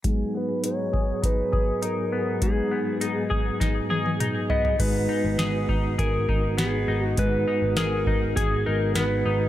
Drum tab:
CC |----------------|----------------|x---------------|----------------|
HH |x---x---x---x---|x---x---x---x---|x---x---x---x---|x---x---x---x---|
SD |----------------|--------o-------|----o-------o---|----o-------o---|
T1 |----------------|----------oo----|----------------|----------------|
T2 |----------------|------------o---|----------------|----------------|
FT |----------------|--------------oo|----------------|----------------|
BD |o-----o-o-o-----|o-----o-o-------|o-----o-o-o-----|o-----o-o-------|